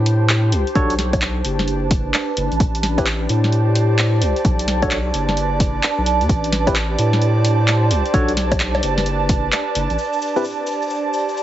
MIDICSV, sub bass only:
0, 0, Header, 1, 2, 480
1, 0, Start_track
1, 0, Tempo, 461538
1, 784, Time_signature, 4, 2, 24, 8
1, 11886, End_track
2, 0, Start_track
2, 0, Title_t, "Sub bass"
2, 0, Program_c, 0, 38
2, 0, Note_on_c, 0, 45, 102
2, 544, Note_on_c, 0, 36, 80
2, 560, Note_off_c, 0, 45, 0
2, 667, Note_off_c, 0, 36, 0
2, 784, Note_on_c, 0, 35, 95
2, 1476, Note_off_c, 0, 35, 0
2, 1505, Note_on_c, 0, 30, 97
2, 2197, Note_off_c, 0, 30, 0
2, 2464, Note_on_c, 0, 30, 91
2, 2587, Note_off_c, 0, 30, 0
2, 2617, Note_on_c, 0, 33, 88
2, 2687, Note_off_c, 0, 33, 0
2, 2705, Note_on_c, 0, 33, 98
2, 3397, Note_off_c, 0, 33, 0
2, 3424, Note_on_c, 0, 45, 95
2, 4385, Note_on_c, 0, 36, 79
2, 4401, Note_off_c, 0, 45, 0
2, 4507, Note_off_c, 0, 36, 0
2, 4625, Note_on_c, 0, 35, 96
2, 5317, Note_off_c, 0, 35, 0
2, 5345, Note_on_c, 0, 30, 96
2, 6037, Note_off_c, 0, 30, 0
2, 6217, Note_on_c, 0, 35, 81
2, 6457, Note_on_c, 0, 40, 97
2, 6472, Note_off_c, 0, 35, 0
2, 6527, Note_off_c, 0, 40, 0
2, 6544, Note_on_c, 0, 33, 104
2, 7236, Note_off_c, 0, 33, 0
2, 7264, Note_on_c, 0, 45, 97
2, 8223, Note_on_c, 0, 36, 82
2, 8238, Note_off_c, 0, 45, 0
2, 8346, Note_off_c, 0, 36, 0
2, 8464, Note_on_c, 0, 35, 99
2, 9156, Note_off_c, 0, 35, 0
2, 9183, Note_on_c, 0, 30, 99
2, 9876, Note_off_c, 0, 30, 0
2, 10144, Note_on_c, 0, 30, 95
2, 10266, Note_off_c, 0, 30, 0
2, 10297, Note_on_c, 0, 33, 88
2, 10367, Note_off_c, 0, 33, 0
2, 11886, End_track
0, 0, End_of_file